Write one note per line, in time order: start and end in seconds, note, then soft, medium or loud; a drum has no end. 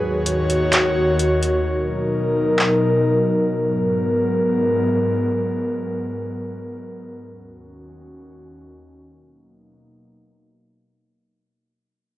0.00 1.64 D#2 medium
0.00 1.64 D#3 medium
0.00 1.64 F#4 medium
0.00 1.64 C#5 medium
0.26 closed hi-hat medium
0.50 closed hi-hat medium
0.73 clap loud
0.73 closed hi-hat medium
1.19 closed hi-hat medium
1.43 closed hi-hat medium
1.65 3.50 B2 medium
1.65 7.20 F#3 medium
1.65 3.50 D#4 medium
1.65 3.50 A#4 medium
2.59 clap loud
3.52 7.20 G#2 medium
3.52 7.20 B3 medium
3.52 7.20 A#4 medium
7.24 9.08 D#2 medium
7.24 9.08 D#3 medium
7.24 9.08 C#4 medium
7.24 9.08 F#4 medium
9.09 10.94 B2 medium
9.09 10.94 F#3 medium
9.09 10.94 A#3 medium
9.09 10.94 D#4 medium